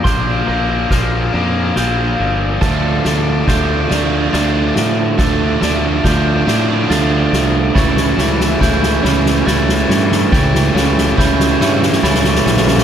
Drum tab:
CC |------------------------|x-----------------------|------------------------|x-----------------------|
RD |x---x---x---x---x---x---|----x---x---x---x---x---|x---x---x---x---x---x---|------------------------|
SD |o-------o-------o-------|o---o---o---o---o---o---|o---o---o---o---o---o---|o-o-o-o-o-o-o-o-o-o-o-o-|
BD |o-------o---------------|o-------o---------------|o-------o---------------|o-------o---------------|

CC |------------------------|
RD |------------------------|
SD |o-o-o-o-o-o-o-oooooooooo|
BD |o-------o---------------|